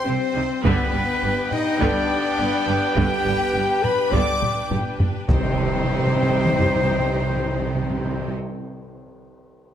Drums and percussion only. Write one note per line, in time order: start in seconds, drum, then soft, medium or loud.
0.65 taiko loud
1.52 taiko low-mid medium
1.80 taiko medium
2.97 taiko loud
3.84 taiko low-mid medium
4.13 taiko medium
4.42 taiko low-mid medium
4.71 taiko low-mid loud
5.00 taiko low loud
5.29 taiko loud
5.29 tam-tam medium
6.45 taiko mid medium
6.60 taiko low medium